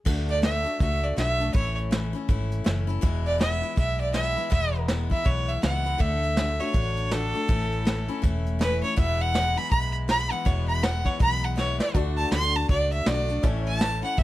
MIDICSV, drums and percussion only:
0, 0, Header, 1, 2, 480
1, 0, Start_track
1, 0, Key_signature, 3, "major"
1, 0, Tempo, 371517
1, 81, Time_signature, 4, 2, 24, 8
1, 18386, End_track
2, 0, Start_track
2, 0, Title_t, "Drums"
2, 81, Note_on_c, 9, 36, 112
2, 83, Note_on_c, 9, 49, 100
2, 210, Note_off_c, 9, 36, 0
2, 212, Note_off_c, 9, 49, 0
2, 367, Note_on_c, 9, 42, 61
2, 496, Note_off_c, 9, 42, 0
2, 556, Note_on_c, 9, 38, 104
2, 556, Note_on_c, 9, 42, 79
2, 686, Note_off_c, 9, 38, 0
2, 686, Note_off_c, 9, 42, 0
2, 850, Note_on_c, 9, 42, 57
2, 980, Note_off_c, 9, 42, 0
2, 1040, Note_on_c, 9, 36, 110
2, 1040, Note_on_c, 9, 42, 83
2, 1169, Note_off_c, 9, 36, 0
2, 1170, Note_off_c, 9, 42, 0
2, 1336, Note_on_c, 9, 42, 62
2, 1465, Note_off_c, 9, 42, 0
2, 1523, Note_on_c, 9, 38, 102
2, 1523, Note_on_c, 9, 42, 78
2, 1652, Note_off_c, 9, 38, 0
2, 1652, Note_off_c, 9, 42, 0
2, 1818, Note_on_c, 9, 42, 54
2, 1947, Note_off_c, 9, 42, 0
2, 1999, Note_on_c, 9, 36, 115
2, 2003, Note_on_c, 9, 42, 76
2, 2128, Note_off_c, 9, 36, 0
2, 2132, Note_off_c, 9, 42, 0
2, 2301, Note_on_c, 9, 42, 57
2, 2430, Note_off_c, 9, 42, 0
2, 2484, Note_on_c, 9, 38, 104
2, 2484, Note_on_c, 9, 42, 78
2, 2613, Note_off_c, 9, 38, 0
2, 2613, Note_off_c, 9, 42, 0
2, 2777, Note_on_c, 9, 42, 55
2, 2906, Note_off_c, 9, 42, 0
2, 2956, Note_on_c, 9, 42, 78
2, 2957, Note_on_c, 9, 36, 106
2, 3085, Note_off_c, 9, 42, 0
2, 3086, Note_off_c, 9, 36, 0
2, 3249, Note_on_c, 9, 42, 64
2, 3378, Note_off_c, 9, 42, 0
2, 3437, Note_on_c, 9, 38, 107
2, 3437, Note_on_c, 9, 42, 82
2, 3566, Note_off_c, 9, 38, 0
2, 3566, Note_off_c, 9, 42, 0
2, 3726, Note_on_c, 9, 42, 60
2, 3855, Note_off_c, 9, 42, 0
2, 3916, Note_on_c, 9, 42, 91
2, 3917, Note_on_c, 9, 36, 110
2, 4045, Note_off_c, 9, 42, 0
2, 4046, Note_off_c, 9, 36, 0
2, 4210, Note_on_c, 9, 42, 59
2, 4340, Note_off_c, 9, 42, 0
2, 4401, Note_on_c, 9, 38, 110
2, 4401, Note_on_c, 9, 42, 81
2, 4530, Note_off_c, 9, 38, 0
2, 4530, Note_off_c, 9, 42, 0
2, 4690, Note_on_c, 9, 42, 61
2, 4820, Note_off_c, 9, 42, 0
2, 4877, Note_on_c, 9, 36, 106
2, 4877, Note_on_c, 9, 42, 81
2, 5006, Note_off_c, 9, 36, 0
2, 5006, Note_off_c, 9, 42, 0
2, 5166, Note_on_c, 9, 42, 65
2, 5296, Note_off_c, 9, 42, 0
2, 5350, Note_on_c, 9, 38, 109
2, 5350, Note_on_c, 9, 42, 80
2, 5480, Note_off_c, 9, 38, 0
2, 5480, Note_off_c, 9, 42, 0
2, 5652, Note_on_c, 9, 42, 59
2, 5781, Note_off_c, 9, 42, 0
2, 5838, Note_on_c, 9, 36, 112
2, 5841, Note_on_c, 9, 42, 83
2, 5967, Note_off_c, 9, 36, 0
2, 5971, Note_off_c, 9, 42, 0
2, 6130, Note_on_c, 9, 42, 56
2, 6259, Note_off_c, 9, 42, 0
2, 6309, Note_on_c, 9, 38, 101
2, 6309, Note_on_c, 9, 42, 75
2, 6438, Note_off_c, 9, 38, 0
2, 6438, Note_off_c, 9, 42, 0
2, 6604, Note_on_c, 9, 42, 55
2, 6605, Note_on_c, 9, 36, 68
2, 6733, Note_off_c, 9, 42, 0
2, 6734, Note_off_c, 9, 36, 0
2, 6789, Note_on_c, 9, 42, 75
2, 6794, Note_on_c, 9, 36, 107
2, 6918, Note_off_c, 9, 42, 0
2, 6923, Note_off_c, 9, 36, 0
2, 7085, Note_on_c, 9, 42, 60
2, 7215, Note_off_c, 9, 42, 0
2, 7276, Note_on_c, 9, 38, 106
2, 7276, Note_on_c, 9, 42, 84
2, 7405, Note_off_c, 9, 38, 0
2, 7405, Note_off_c, 9, 42, 0
2, 7566, Note_on_c, 9, 42, 57
2, 7695, Note_off_c, 9, 42, 0
2, 7752, Note_on_c, 9, 42, 83
2, 7754, Note_on_c, 9, 36, 106
2, 7881, Note_off_c, 9, 42, 0
2, 7883, Note_off_c, 9, 36, 0
2, 8047, Note_on_c, 9, 42, 63
2, 8176, Note_off_c, 9, 42, 0
2, 8229, Note_on_c, 9, 38, 106
2, 8229, Note_on_c, 9, 42, 84
2, 8359, Note_off_c, 9, 38, 0
2, 8359, Note_off_c, 9, 42, 0
2, 8521, Note_on_c, 9, 42, 59
2, 8650, Note_off_c, 9, 42, 0
2, 8708, Note_on_c, 9, 42, 86
2, 8713, Note_on_c, 9, 36, 103
2, 8837, Note_off_c, 9, 42, 0
2, 8843, Note_off_c, 9, 36, 0
2, 9003, Note_on_c, 9, 42, 67
2, 9132, Note_off_c, 9, 42, 0
2, 9191, Note_on_c, 9, 38, 109
2, 9191, Note_on_c, 9, 42, 82
2, 9320, Note_off_c, 9, 38, 0
2, 9320, Note_off_c, 9, 42, 0
2, 9493, Note_on_c, 9, 42, 56
2, 9622, Note_off_c, 9, 42, 0
2, 9679, Note_on_c, 9, 36, 111
2, 9680, Note_on_c, 9, 42, 84
2, 9808, Note_off_c, 9, 36, 0
2, 9810, Note_off_c, 9, 42, 0
2, 9974, Note_on_c, 9, 42, 59
2, 10104, Note_off_c, 9, 42, 0
2, 10163, Note_on_c, 9, 38, 105
2, 10163, Note_on_c, 9, 42, 80
2, 10292, Note_off_c, 9, 38, 0
2, 10292, Note_off_c, 9, 42, 0
2, 10457, Note_on_c, 9, 42, 57
2, 10587, Note_off_c, 9, 42, 0
2, 10641, Note_on_c, 9, 36, 110
2, 10645, Note_on_c, 9, 42, 79
2, 10770, Note_off_c, 9, 36, 0
2, 10774, Note_off_c, 9, 42, 0
2, 10935, Note_on_c, 9, 42, 61
2, 11064, Note_off_c, 9, 42, 0
2, 11121, Note_on_c, 9, 38, 106
2, 11121, Note_on_c, 9, 42, 82
2, 11250, Note_off_c, 9, 38, 0
2, 11250, Note_off_c, 9, 42, 0
2, 11415, Note_on_c, 9, 42, 60
2, 11544, Note_off_c, 9, 42, 0
2, 11597, Note_on_c, 9, 36, 114
2, 11598, Note_on_c, 9, 42, 85
2, 11727, Note_off_c, 9, 36, 0
2, 11727, Note_off_c, 9, 42, 0
2, 11891, Note_on_c, 9, 42, 58
2, 12020, Note_off_c, 9, 42, 0
2, 12079, Note_on_c, 9, 38, 106
2, 12079, Note_on_c, 9, 42, 83
2, 12208, Note_off_c, 9, 38, 0
2, 12208, Note_off_c, 9, 42, 0
2, 12365, Note_on_c, 9, 42, 60
2, 12494, Note_off_c, 9, 42, 0
2, 12554, Note_on_c, 9, 42, 88
2, 12555, Note_on_c, 9, 36, 110
2, 12683, Note_off_c, 9, 42, 0
2, 12684, Note_off_c, 9, 36, 0
2, 12842, Note_on_c, 9, 42, 64
2, 12972, Note_off_c, 9, 42, 0
2, 13033, Note_on_c, 9, 38, 115
2, 13033, Note_on_c, 9, 42, 84
2, 13162, Note_off_c, 9, 38, 0
2, 13162, Note_off_c, 9, 42, 0
2, 13325, Note_on_c, 9, 42, 62
2, 13454, Note_off_c, 9, 42, 0
2, 13516, Note_on_c, 9, 36, 108
2, 13516, Note_on_c, 9, 42, 92
2, 13645, Note_off_c, 9, 36, 0
2, 13645, Note_off_c, 9, 42, 0
2, 13807, Note_on_c, 9, 42, 61
2, 13937, Note_off_c, 9, 42, 0
2, 13996, Note_on_c, 9, 38, 111
2, 13996, Note_on_c, 9, 42, 81
2, 14125, Note_off_c, 9, 38, 0
2, 14125, Note_off_c, 9, 42, 0
2, 14284, Note_on_c, 9, 42, 58
2, 14285, Note_on_c, 9, 36, 69
2, 14413, Note_off_c, 9, 42, 0
2, 14415, Note_off_c, 9, 36, 0
2, 14470, Note_on_c, 9, 42, 79
2, 14475, Note_on_c, 9, 36, 108
2, 14599, Note_off_c, 9, 42, 0
2, 14604, Note_off_c, 9, 36, 0
2, 14767, Note_on_c, 9, 42, 59
2, 14896, Note_off_c, 9, 42, 0
2, 14956, Note_on_c, 9, 38, 59
2, 15085, Note_off_c, 9, 38, 0
2, 15246, Note_on_c, 9, 38, 80
2, 15375, Note_off_c, 9, 38, 0
2, 15432, Note_on_c, 9, 42, 82
2, 15437, Note_on_c, 9, 36, 112
2, 15561, Note_off_c, 9, 42, 0
2, 15566, Note_off_c, 9, 36, 0
2, 15730, Note_on_c, 9, 42, 60
2, 15860, Note_off_c, 9, 42, 0
2, 15916, Note_on_c, 9, 38, 104
2, 15916, Note_on_c, 9, 42, 79
2, 16045, Note_off_c, 9, 38, 0
2, 16045, Note_off_c, 9, 42, 0
2, 16208, Note_on_c, 9, 42, 60
2, 16337, Note_off_c, 9, 42, 0
2, 16394, Note_on_c, 9, 42, 86
2, 16398, Note_on_c, 9, 36, 114
2, 16523, Note_off_c, 9, 42, 0
2, 16528, Note_off_c, 9, 36, 0
2, 16688, Note_on_c, 9, 42, 65
2, 16818, Note_off_c, 9, 42, 0
2, 16876, Note_on_c, 9, 38, 112
2, 16876, Note_on_c, 9, 42, 89
2, 17006, Note_off_c, 9, 38, 0
2, 17006, Note_off_c, 9, 42, 0
2, 17170, Note_on_c, 9, 42, 62
2, 17299, Note_off_c, 9, 42, 0
2, 17359, Note_on_c, 9, 42, 89
2, 17361, Note_on_c, 9, 36, 112
2, 17489, Note_off_c, 9, 42, 0
2, 17491, Note_off_c, 9, 36, 0
2, 17654, Note_on_c, 9, 42, 61
2, 17783, Note_off_c, 9, 42, 0
2, 17841, Note_on_c, 9, 38, 110
2, 17841, Note_on_c, 9, 42, 82
2, 17971, Note_off_c, 9, 38, 0
2, 17971, Note_off_c, 9, 42, 0
2, 18138, Note_on_c, 9, 42, 57
2, 18267, Note_off_c, 9, 42, 0
2, 18319, Note_on_c, 9, 42, 85
2, 18321, Note_on_c, 9, 36, 104
2, 18386, Note_off_c, 9, 36, 0
2, 18386, Note_off_c, 9, 42, 0
2, 18386, End_track
0, 0, End_of_file